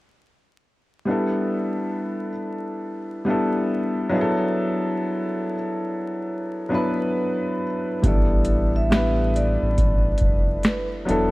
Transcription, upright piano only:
1.05 G3 B3 D4
1.10 E4 A4
3.25 G3 B3 D4
3.29 E4 A4
4.09 F#3 B3 D4
4.13 E4 G#4
4.21 A4
6.69 F#3 B3 D4
6.73 E4 B4
8.02 G3 B3 D4
8.06 E4 A4
8.90 G3 B3 D4 E4
8.95 B4
11.05 F#3 B3 D4
11.09 E4 A4

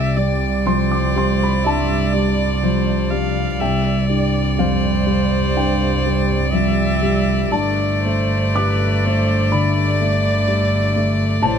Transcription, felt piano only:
Already playing: C2 G5
0.17 G3
0.66 F3 C6
0.91 D6
1.16 G3 C6
1.43 B5
1.65 G2 A5
2.14 G3
2.63 F3
3.12 G3
3.61 C2 G5
4.09 G2
4.59 F2 F5
5.07 G3
5.56 G2 G5
6.06 G3
6.53 F3
7.03 G3
7.52 G2 A5
8.06 A3
8.55 G3 D6
9.07 A3
9.52 D3 B5
10.01 A3
10.48 G3
10.96 A3
11.42 A2 A5

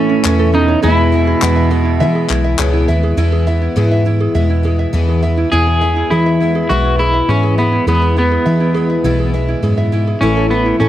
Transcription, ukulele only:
Already playing: A4 C#5
0.09 C#4
0.24 C#5
0.39 A4
0.54 C#4
0.68 C#5
0.83 G#4
0.97 E4
1.27 G#4
1.41 E4
1.56 E5
1.71 G#4
1.85 E4
2.00 E5
2.15 G#4
2.29 E4
2.44 E5
2.59 G#4
2.73 E4
2.88 E5
3.03 G#4
3.18 E4
3.32 G#4
3.47 E5
3.62 E4
3.76 G#4
3.91 E5
4.06 E4
4.20 G#4
4.35 E5
4.50 E4
4.65 G#4
4.79 E5
5.08 G#4
5.23 E5
5.38 E4
5.52 E4
5.67 G#4
5.81 E5
5.96 E4
6.11 G#4
6.26 E5
6.40 E4
6.55 G#4
6.70 E5
6.84 E4
6.99 G#4
7.14 E5
7.43 G#4
7.58 E5
7.72 E4
7.87 G#4
8.02 E5
8.17 E4
8.31 G#4
8.46 E5
8.60 E4
8.74 G#4
8.90 E5
9.04 E4
9.19 G#4
9.34 E5
9.48 E4
9.63 G#4
9.78 E5
9.92 E4
10.07 G#4
10.22 E4
10.36 A4
10.51 E5
10.66 E4
10.80 A4

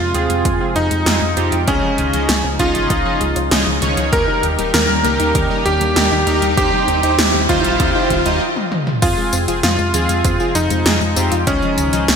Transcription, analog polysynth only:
0.14 C4 F4 G#4
0.60 C4 F4 G#4
1.06 C4 F4 G#4
1.37 C4 F4 G4
1.67 C#4 D#4 F4 G#4 D#5
2.13 C#4 D#4 F4 G#4 D#5
2.59 C#4 D#4 F4 G#4 D#5
3.05 C#4 D#4 F4 G#4 D#5
3.51 C#4 D#4 F4 G#4 D#5
3.82 C#4 D#4 F4 G#4 C#5
4.13 D#4 G4 A#4
4.58 D#4 G4 A#4
5.04 D#4 G4 A#4
5.50 D#4 G4 A#4
5.96 D#4 G4 A#4
6.27 D#4 G4 A#4
6.57 D#4 G4 C5
7.03 D#4 G4 C5
7.49 D#4 G4 C5
7.95 D#4 G4 C5
8.26 D#4 G4 D#5
9.02 C4 F4 G#4
9.48 C4 F4 G#4
9.94 C4 F4 G#4
10.40 C4 F4 G#4
10.86 C4 F4 G#4
11.16 C4 F4 G4
11.47 C#4 D#4 F4 G#4 D#5
11.93 C#4 D#4 F4 G#4 D#5

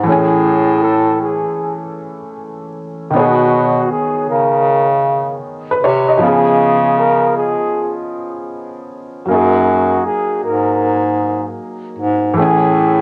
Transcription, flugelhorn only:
0.06 G#4
0.83 A4
1.21 G#4
3.14 F#4
3.92 G#4
4.30 A#4
6.22 G#4
6.99 A#4
7.37 G#4
9.29 F#4
10.06 G#4
10.44 A#4
12.37 G#4

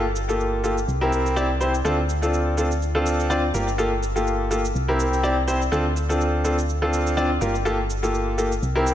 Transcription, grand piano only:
0.29 A#3 F4 G4 A4
0.64 A#3 F4 G4 A4
1.01 C4 E4 G4 A#4
1.36 C4 E4 G4 D5
1.61 C4 E4 G4 C5
1.85 C4 D4 F4 A4
2.22 C4 D4 F4 A4
2.57 C4 D4 F4 A4
2.95 C4 D4 F4 A4
3.30 C4 D4 F4 D5
3.54 A#3 F4 G4 A#4
3.78 A#3 F4 G4 A4
4.16 A#3 F4 G4 A4
4.51 A#3 F4 G4 A4
4.88 C4 E4 G4 A#4
5.23 C4 E4 G4 D5
5.48 C4 E4 G4 C5
5.72 C4 D4 F4 A4
6.09 C4 D4 F4 A4
6.44 C4 D4 F4 A4
6.82 C4 D4 F4 A4
7.17 C4 D4 F4 D5
7.41 A#3 F4 G4 A#4
7.65 A#3 F4 G4 A4
8.03 A#3 F4 G4 A4
8.38 A#3 F4 G4 A4
8.75 C4 E4 G4 A#4

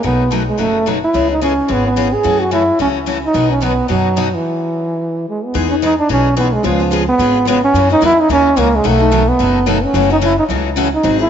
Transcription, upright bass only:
0.04 B1
0.59 F#1
1.14 C#2
1.69 G#1
2.25 F#2
2.79 C#2
3.34 B1
3.89 F#2
5.55 E2
6.09 B1
6.64 C#2
7.19 G#1
7.74 F#2
8.02 E2
8.29 D#2
8.57 C#2
8.85 B1
9.39 F#1
9.94 F#1
10.49 C#2
11.03 G#1

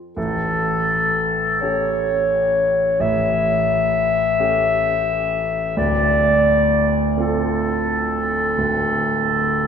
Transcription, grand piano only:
Already playing: F2 A3 C4 F4
0.17 A1 A2
1.62 A3 C#4 G4
3.00 A1 A2
4.40 A3 C#4 G4
5.77 D1 D2
7.17 A3 C4 F4
8.58 D1 D2

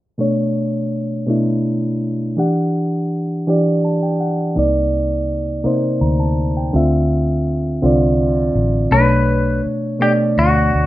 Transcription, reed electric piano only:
0.18 B2 A3 D4 C#5
1.27 B2 A3 D4 E4
2.37 E3 D4 G4 F#5
3.47 E3 D4 G4 D5
3.85 A5
4.03 G5
4.20 F#5
4.55 C3 A#3 D#4 D5
5.63 C3 A#3 D#4 C5
6.01 A#5
6.20 A5
6.57 G5
6.73 D3 C4 F4 E5
7.82 D3 C4 F4 D5
8.91 B2 A3 C#4 C#5
8.99 D4
9.99 B2 A3 D4 D5

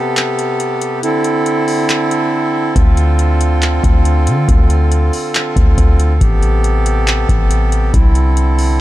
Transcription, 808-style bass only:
2.76 D2
3.84 D2
4.27 D3
4.49 D2
5.56 D2
5.78 D2
6.21 A1
7.29 A1
7.94 C2

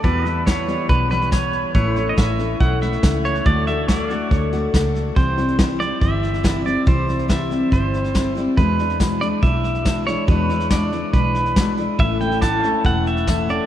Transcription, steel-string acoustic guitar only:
0.03 E2 B2 E3 G3 B3 E4
0.25 E3 G3 B3 E4
0.47 E3 G3 B3 E4
0.67 E3 G3 B3 E4
1.10 E3 G3 B3 E4
1.31 E3 G3 B3 E4
1.74 A2 E3 A3 C#4 E4
1.96 A3 C#4 E4
2.16 E3 A3 C#4 E4
2.39 A3 C#4 E4
2.81 A3 C#4 E4
3.02 E3 A3 C#4 E4
3.45 D3 A3 D4 F#4
3.67 A3 D4 F#4
3.88 D3 A3 D4 F#4
4.10 A3 D4 F#4
4.53 A3 D4 F#4
4.75 A3 D4 F#4
5.16 C3 E3 G3 C4 E4
5.37 G3 C4 E4
5.58 C3 E3 G3 C4 E4
5.80 G3 C4 E4
6.01 E3 G3 C4 E4
6.43 C3 E3 G3 C4 E4
6.64 G3 C4 E4
6.86 C3 E3 G3 C4 E4
7.07 G3 C4 E4
7.28 C3 E3 G3 C4 E4
7.50 G3 C4 E4
7.71 E3 G3 C4 E4
8.14 C3 E3 G3 C4 E4
8.35 G3 C4 E4
8.57 E2 B2 E3 G#3 D4 E4
8.79 E3 G#3 D4 E4
8.99 E2 B2 E3 G#3 D4 E4
9.21 E3 G#3 D4 E4
9.42 E3 G#3 D4 E4
9.85 E2 B2 E3 G#3 D4 E4
10.07 E3 G#3 D4 E4
10.27 E2 B2 E3 G#3 D4 E4
10.49 E3 G#3 D4 E4
10.71 E2 B2 E3 G#3 D4 E4
10.92 E3 G#3 D4 E4
11.14 E3 G#3 D4 E4
11.56 E2 B2 E3 G#3 D4 E4
11.77 E3 G#3 D4 E4
11.99 A2 E3 A3 C#4 E4
12.20 A3 C#4 E4
12.41 A2 E3 A3 C#4 E4
12.63 A3 C#4 E4
12.84 E3 A3 C#4 E4
13.27 A2 E3 A3 C#4 E4
13.48 A3 C#4 E4

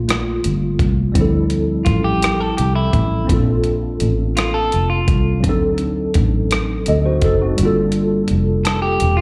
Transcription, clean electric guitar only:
1.85 F4
2.04 G4
2.40 A4
2.57 G4
2.75 E4
4.37 F4
4.54 A4
4.90 F4
8.65 A4
8.82 G4
9.17 F4

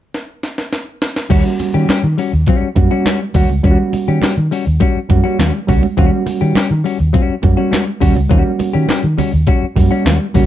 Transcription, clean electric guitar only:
1.30 G3 C#4 F#4
1.45 muted clean electric guitar stroke
1.60 muted clean electric guitar stroke
1.74 G3 C#4 G4
1.88 G3 C#4 G4
2.04 muted clean electric guitar stroke
2.18 G3 C#4 F#4
2.33 muted clean electric guitar stroke
2.48 G3 C#4 F#4
2.77 muted clean electric guitar stroke
2.91 G3 C#4 F#4
3.06 G3 C#4 F#4
3.21 muted clean electric guitar stroke
3.35 G3 C#4 F#4
3.51 muted clean electric guitar stroke
3.64 G3 C#4 F#4
3.79 muted clean electric guitar stroke
3.93 muted clean electric guitar stroke
4.08 G3 C#4 G4
4.22 G3 C#4 G4
4.36 muted clean electric guitar stroke
4.51 G3 C#4 F#4
4.66 muted clean electric guitar stroke
4.80 G3 C#4 F#4
5.10 muted clean electric guitar stroke
5.24 G3 C#4 F#4
5.39 G3 C#4 F#4
5.54 muted clean electric guitar stroke
5.68 G3 C#4 F#4
5.83 muted clean electric guitar stroke
5.97 G3 C#4 F#4
6.12 muted clean electric guitar stroke
6.26 muted clean electric guitar stroke
6.41 G3 C#4 G4
6.55 G3 C#4 G4
6.70 muted clean electric guitar stroke
6.84 G3 C#4 F#4
6.99 muted clean electric guitar stroke
7.13 G3 C#4 F#4
7.42 muted clean electric guitar stroke
7.57 G3 C#4 F#4
7.71 G3 C#4 F#4
7.86 muted clean electric guitar stroke
8.00 G3 C#4 F#4
8.16 muted clean electric guitar stroke
8.29 G3 C#4 F#4
8.44 muted clean electric guitar stroke
8.59 muted clean electric guitar stroke
8.73 G3 C#4 G4
8.88 G3 C#4 G4
9.03 muted clean electric guitar stroke
9.18 G3 C#4 F#4
9.47 G3 C#4 F#4
9.76 muted clean electric guitar stroke
9.91 G3 C#4 F#4
10.05 G3 C#4 F#4
10.20 muted clean electric guitar stroke
10.34 G3 C#4 F#4

